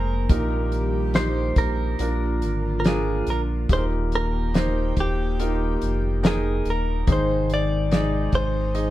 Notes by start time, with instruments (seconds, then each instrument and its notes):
Already playing: sub bass F1, analog synth pad C3 G#3 A#3 D#4, grand piano C4 G#4 A#4 C5, clean electric guitar A#4
0.29 sub bass A#1, grand piano A#2 D#4 G4 A#4, analog synth pad D#3 G3 G4, kick, closed hi-hat
0.72 closed hi-hat
1.14 grand piano D#4 G4 C5, clean electric guitar C5, snare, closed hi-hat
1.56 sub bass A#1, clean electric guitar A#4, kick, closed hi-hat
1.99 sub bass A#1, analog synth pad D3 F3 F4, grand piano D4 F4 A#4, closed hi-hat
2.42 sub bass G#1, closed hi-hat
2.80 clean electric guitar A#4
2.84 grand piano D4 F4 A#4, clean electric guitar G#4, snare, closed hi-hat
3.27 sub bass A#1, clean electric guitar A#4, closed hi-hat
3.69 sub bass D#1, grand piano A#2 D#4 G4 G#4, analog synth pad D#3 A#3 G5, kick, closed hi-hat
3.73 grand piano A#4, clean electric guitar C5
4.12 clean electric guitar A#4, closed hi-hat
4.54 grand piano D#4 G4 C5, snare, closed hi-hat
4.97 sub bass D#1, clean electric guitar G4, kick, closed hi-hat
5.40 grand piano D#4 F4 A#4, closed hi-hat
5.46 grand piano G4
5.82 sub bass F1, closed hi-hat
6.23 grand piano D#4 A#4 G5, clean electric guitar G#4, snare, closed hi-hat
6.65 sub bass D#1, closed hi-hat
6.70 clean electric guitar A#4
7.07 sub bass G#1, grand piano G#2 D#3 D#4 G#4 C5, analog synth pad C3 D#3 G#3 D#4, kick, closed hi-hat
7.12 clean electric guitar C5
7.50 closed hi-hat
7.54 clean electric guitar D5
7.91 grand piano D#4 G#4 D5, snare, closed hi-hat
8.32 sub bass G#1, clean electric guitar C5, kick, closed hi-hat
8.74 grand piano D#4 G#4 D#5, closed hi-hat